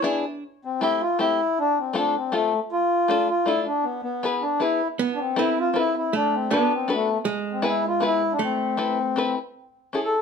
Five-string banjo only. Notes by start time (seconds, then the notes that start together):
0.02 B3 D4 E4 G#4
0.81 A3 C4 E4 G4
1.19 A3 C4 E4 G4
1.93 A3 C4 F4 A4
2.32 A3 C4 F4 A4
3.08 A3 D4 F4 A4
3.46 A3 D4 F4 A4
4.23 B3 E4 G#4 B4
4.60 B3 E4 G#4 B4
5.36 C4 E4 A4 B4
5.74 C4 E4 A4 B4
6.51 D4 F#4 A4 B4
6.88 D4 F#4 A4 B4
7.62 B3 E4 G#4 B4
8.00 B3 E4 G#4 B4
8.77 C4 E4 A4 B4
9.16 C4 E4 A4 B4
9.93 C#4 E4 G#4 A4